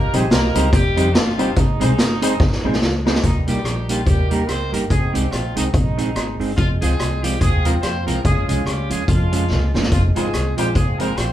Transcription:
Already playing: C2 A#3 D#4 G4 A#4
0.13 A#1 G3 G#3 C4 D#4 G4 G#4 C5, closed hi-hat
0.30 C2 A#3 D#4 G4 A#4 C5, snare, closed hi-hat
0.54 C#2 G3 C4 D#4 G4 C5, closed hi-hat
0.73 D#2 G3 C4 D#4 G4, kick, closed hi-hat
0.96 F2 G3 C4 D#4 G4 C5, closed hi-hat
1.14 G1 F3 C4 F4, snare, closed hi-hat
1.38 G3 C4 D#4 G4 C5, closed hi-hat
1.56 G#1 D#3 G#3 C4 D#4, kick, closed hi-hat
1.80 C2 G#3 C4 D#4 G#4 C5, closed hi-hat
1.98 G1 G#4 C5, snare, closed hi-hat
2.21 G#3 C4 D#4 G#4 C5, closed hi-hat
2.40 G#1, kick, snare
2.52 snare
2.64 A#1 G#3 C4 D#4 G#4 C5
2.73 snare
2.82 C#2, snare
3.05 G#3 C4 D#4 G#4 C5, snare
3.15 snare
3.24 D#2 D#3 G3 A#3 D#4, kick, closed hi-hat
3.47 C2 G3 A#3 D#4 G4, closed hi-hat
3.65 A#1, cross-stick, closed hi-hat
3.89 F3 G3 A#3 D#4 F4 G4, closed hi-hat
4.06 D#2 G3 A#3 D#4 G4, kick, closed hi-hat
4.31 G3 A#3 D#4 G4 A#4, closed hi-hat
4.48 C#2 C4 C5, cross-stick, closed hi-hat
4.72 G1 G3 A#3 D#4 G4 A#4, closed hi-hat
4.90 G#1 G#3 C4 D#4 G#4, kick, closed hi-hat
5.14 C2 G3 G#3 C4 D#4 G4 G#4, closed hi-hat
5.32 A#1 F3 F4, cross-stick, closed hi-hat
5.56 C2 D#3 G#3 C4 D#4 G#4, closed hi-hat
5.72 A#1 D#3 G#3 C4 D#4, kick, closed hi-hat
5.97 G#3 C4 D#4 G#4, closed hi-hat
6.15 G#1, cross-stick, closed hi-hat
6.39 G1 G#3 C4 D#4 G#4, open hi-hat
6.57 F2 F3 G#3 C4 F4, kick, closed hi-hat
6.81 C#2 F3 G#3 C4 F4 G#4, closed hi-hat
6.99 C2, cross-stick, closed hi-hat
7.23 F3 G3 G#3 C4 F4 G4, closed hi-hat
7.41 D#2 G#3 C4 F4 G#4, kick, closed hi-hat
7.65 F3 G#3 A#3 C4 F4 A#4, closed hi-hat
7.82 F2 C4 C5, cross-stick, closed hi-hat
8.06 C2 F3 G#3 A#3 C4 F4 A#4, closed hi-hat
8.23 C#2 G#3 C#4 F4 G#4, kick, closed hi-hat
8.47 C2 F3 G#3 C#4 F4 G#4, closed hi-hat
8.65 C#2 G3 G4, cross-stick, closed hi-hat
8.89 D#2 F3 G#3 C#4 F4 G#4, closed hi-hat
9.07 F2 F3 G#3 C#4 F4, kick, closed hi-hat
9.32 F3 G#3 C#4 F4, closed hi-hat
9.50 C#2, snare
9.74 G1 F3 G#3 C#4 F4, snare
9.83 snare
9.91 F1 F3 G#3 C4 F4, kick, closed hi-hat
10.15 G#1 F3 G#3 C4 F4 G#4 C5, closed hi-hat
10.33 C2 G#4 C5, cross-stick, closed hi-hat
10.57 A#1 F3 G3 G#3 C4 F4 G4 G#4 C5, closed hi-hat
10.75 G#1 G#3 C4 F4 G#4, kick, closed hi-hat
10.99 F3 G#3 A#3 C4 F4 G#4 A#4 C5, closed hi-hat
11.17 A#1 C4 C5, cross-stick, closed hi-hat

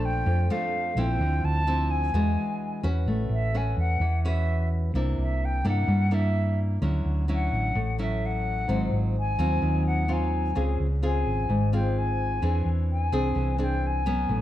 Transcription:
Already playing: A#1 A#2 F3 A3 D4
0.05 G5
0.26 F2
0.50 F3 A3 D4 F5
0.96 A#1 F3 C4 E4 G5
1.20 D2 D3
1.44 D2 A5
1.67 F3 C4 E4
1.90 G#5
2.14 E2 E3 G#3 D4 F#4
2.83 E2 C#4 F#4 B4
3.06 A1 A3
3.29 A1 E5
3.54 C#4 F#4 B4 G#5
3.77 E2 F#5
4.00 E2 E3
4.25 C#4 F#4 B4 E5
4.94 C2 C3 A#3 D4 E4
5.18 C2 E5
5.45 G5
5.65 G2 A#3 D4 E4 F#5
5.88 G2 G3
6.11 A#3 D4 E4 E5
6.82 D2 D3 F#3 C#4 E4
7.05 D2
7.28 F#3 C#4 E4
7.33 F#5
7.52 A1
7.75 A1 A2
7.99 F#3 C#4 E4 E5
8.25 F#5
8.68 G#1 G#2 F#3 C4 F4
8.92 G#1
9.19 G#5
9.38 D#2 F#3 C4 F4
9.62 D#2 D#3
9.87 F#5
10.08 F#3 C4 F4 G#5
10.55 C#2 C#3 C4 F4 G#4
10.80 C#2
11.03 C4 F4 G#4 G#5
11.26 G#1
11.49 G#1 G#2
11.73 C4 F4 G#4 G5
11.98 G#5
12.42 E2 E3 C4 D4 G#4
12.65 E2
12.91 G#5
13.12 C2 C4 D4 G#4
13.35 C2 E3
13.58 C4 D4 G#4 G5
13.86 G#5
14.06 F#3 B3 C#4
14.29 A1 A2

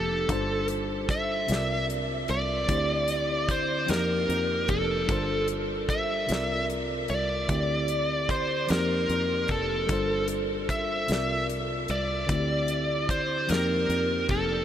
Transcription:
Already playing: F1 F3 A#3 C4 D#4 G4 A4
0.27 G1 G3 D4 F4, kick, closed hi-hat
0.31 A4 C5
0.68 closed hi-hat
1.09 E5, kick, closed hi-hat
1.47 C2 C3 C4 F4 A#4, closed hi-hat
1.52 D5, snare
1.90 closed hi-hat
2.28 C2 D5, closed hi-hat
2.66 D2 D3 C4 E4 G4, kick, closed hi-hat
2.72 C5
2.78 D5
3.08 closed hi-hat
3.49 C5, kick, closed hi-hat
3.86 F2 F3 C4 D#4 G4, closed hi-hat
3.91 A#3 A#4, snare
4.29 F2, closed hi-hat
4.68 F1 A4, kick, closed hi-hat
5.06 G1 G3 D4 F4 A4, kick, closed hi-hat
5.12 C5
5.48 closed hi-hat
5.89 E5, kick, closed hi-hat
6.27 C2 C3 C4 F4 A#4, closed hi-hat
6.32 D5, snare
6.70 closed hi-hat
7.08 C2 D5, closed hi-hat
7.47 D2 D3 C4 E4 G4, kick, closed hi-hat
7.53 D5
7.88 closed hi-hat
8.29 C5, kick, closed hi-hat
8.67 F2 F3 C4 D#4 A#4, closed hi-hat
8.71 A#3 G4, snare
9.09 F2, closed hi-hat
9.48 F1 A4, kick, closed hi-hat
9.87 G1 G3 D4 F4, kick, closed hi-hat
9.91 A4 C5
10.28 closed hi-hat
10.69 E5, kick, closed hi-hat
11.07 C2 C3 C4 F4 A#4, closed hi-hat
11.12 D5, snare
11.49 closed hi-hat
11.88 C2 D5, closed hi-hat
12.27 D2 D3 C4 E4 F#4, kick, closed hi-hat
12.32 D5
12.37 G4
12.68 closed hi-hat
13.09 C5, kick, closed hi-hat
13.47 F2 F3 C4 D#4 A#4, closed hi-hat
13.51 A#3 G4, snare
13.89 F2, closed hi-hat
14.29 F1 A4, kick, closed hi-hat

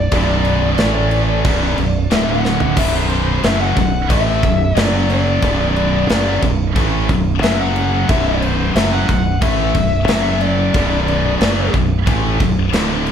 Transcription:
Already playing: D5
0.11 B0 B1 F#2 B2, kick, crash
0.45 crash
0.78 A1 A2 E3 A3, snare, crash
1.11 crash
1.45 B0 B1 F#2 B2, kick, crash
1.78 B0 B1 F#2, crash
2.11 D1 D2 A2 D3 E5, snare, crash
2.30 F#5
2.45 snare
2.60 floor tom
2.76 B0 B1 F#2 B2 E5, kick, crash
2.95 C5
3.10 crash
3.43 F#1 F#2 C#3 F#3 E5, snare, crash
3.61 F#5
3.76 B0 B1 F#2, kick, crash
4.09 A1 A2 E3 A3 E5, kick, crash
4.43 B0 B1 F#2, kick, crash
4.76 F#1 F#2 C#3 F#3 D5, snare, crash
5.10 D5, crash
5.42 B0 B1 F#2 B2, kick, crash
5.76 crash
6.09 F#1 F#2 C#3 F#3, snare, crash
6.42 B0 B1 F#2, kick, crash
6.76 A1 A2 E3 A3, kick, crash
7.09 B0 B1 F#2, kick, crash
7.42 F#1 F#2 C#3 F#3 E5, snare, crash
7.60 F#5
7.76 crash
8.08 B0 B1 F#2 B2 E5, kick, crash
8.27 C5
8.42 crash
8.75 F#1 F#2 C#3 F#3 E5, snare, crash
8.92 F#5
9.09 B0 B1 F#2, kick, crash
9.42 A1 A2 E3 A3 E5, kick, crash
9.74 B0 B1 F#2, kick, crash
10.08 F#1 F#2 C#3 F#3, snare, crash
10.41 D5, crash
10.74 B0 B1 F#2 B2, kick, crash
11.08 crash
11.40 F#1 F#2 C#3 F#3, snare, crash
11.74 B0 B1 F#2, kick, crash
12.06 A1 A2 E3 A3, kick, crash
12.40 B0 B1 F#2, kick, crash
12.73 D1 D2 A2 D3, snare, crash
13.06 crash

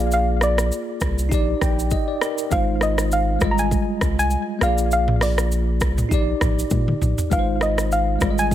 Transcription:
Already playing: A#1 A#3 F4 G#4 D5 F5
0.12 F5, shaker
0.41 D5, cross-stick, shaker
0.58 cross-stick, shaker
0.72 shaker
1.01 C2, kick, cross-stick, shaker
1.18 shaker
1.29 A#1 D#4 G4, kick, shaker
1.34 D5
1.61 A#1 G5, kick, cross-stick, shaker
1.79 shaker
1.91 D#5, kick, shaker
2.08 D5
2.21 A#4, cross-stick, shaker
2.38 shaker
2.50 G#1 G#3 D#4 F4 C5 F5, kick, shaker
2.81 D#5, cross-stick, shaker
2.98 cross-stick, shaker
3.12 F5, shaker
3.39 G#1 G3 G#3 F4, kick, cross-stick, shaker
3.44 D#5
3.51 A#5
3.58 G#5, shaker
3.71 kick, shaker
4.01 C2, kick, cross-stick, shaker
4.19 G#5, shaker
4.31 shaker
4.59 A#1 A#3 F4 G#4, cross-stick, shaker
4.63 D5 F5
4.78 shaker
4.91 F5, shaker
5.08 mid tom
5.21 D5, cross-stick, open hi-hat, shaker
5.38 cross-stick, shaker
5.52 shaker
5.81 C2, kick, cross-stick, shaker
5.98 mid tom, shaker
6.09 A#1 D#4 G4, kick, shaker
6.14 D5
6.41 A#1, kick, cross-stick, mid tom, shaker
6.59 shaker
6.70 A#2, kick, high tom, shaker
6.88 mid tom
7.02 A#1, mid tom, shaker
7.18 floor tom, shaker
7.30 G#1 G#3 D#4 F4 B4 F5, kick, shaker
7.39 C5
7.61 D#5, cross-stick, shaker
7.78 cross-stick, shaker
7.92 F5, shaker
8.19 G#1 G3 G#3 F4, kick, cross-stick, shaker
8.24 D5
8.30 D#5
8.38 G#5, shaker
8.51 kick, shaker

